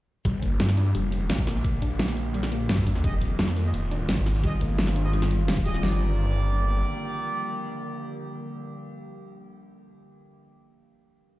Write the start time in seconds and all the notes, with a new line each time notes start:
0.25 G1 D3 G3 A#3 G4, kick, closed hi-hat
0.42 A#3, kick, closed hi-hat, shaker
0.60 G2, snare, closed hi-hat
0.69 snare
0.77 D4, snare, closed hi-hat, shaker
0.86 shaker
0.95 F1 G3, closed hi-hat
1.12 closed hi-hat, shaker
1.21 shaker
1.30 A#1 G3, snare, closed hi-hat
1.38 kick
1.47 A#3, snare, closed hi-hat, open hi-hat, shaker
1.56 snare
1.65 kick, closed hi-hat
1.82 A#1 D4, kick, closed hi-hat, shaker
1.91 closed hi-hat
1.99 G3, snare, closed hi-hat, open hi-hat
2.08 snare, closed hi-hat
2.17 closed hi-hat, shaker
2.26 shaker
2.34 G3, closed hi-hat
2.43 snare
2.52 A#3, closed hi-hat, shaker
2.60 closed hi-hat, shaker
2.69 G2, snare, closed hi-hat
2.78 kick, snare
2.87 D4, kick, closed hi-hat, open hi-hat, shaker
2.95 snare
3.04 F1 D#3 G3 G#3 C4 F4 G4 G#4 D#5, kick, closed hi-hat
3.22 kick, closed hi-hat, shaker
3.39 F2 G3, snare, closed hi-hat
3.48 snare
3.56 A#3, snare, closed hi-hat, shaker
3.65 G4 G#4 D#5, shaker
3.74 D#1, closed hi-hat
3.91 D4, closed hi-hat, shaker
4.00 shaker
4.09 G#1 G3, snare, closed hi-hat
4.17 kick
4.26 snare, closed hi-hat, open hi-hat, shaker
4.35 snare
4.44 G3 G4 G#4 D#5, kick, closed hi-hat
4.61 G1 A#3, kick, closed hi-hat, shaker
4.70 closed hi-hat
4.78 snare, closed hi-hat, open hi-hat
4.87 snare, closed hi-hat
4.96 D4, closed hi-hat, shaker
5.05 G4 G#4 D#5, shaker
5.13 G3, closed hi-hat
5.22 snare
5.31 closed hi-hat, shaker
5.40 closed hi-hat, shaker
5.48 G3, snare, closed hi-hat
5.57 kick, snare
5.66 G3 G4 G#4 D#5, kick, closed hi-hat, open hi-hat, shaker
5.74 snare
5.83 G1 D3 G3 A#3 G4 A#4 D5, snare, crash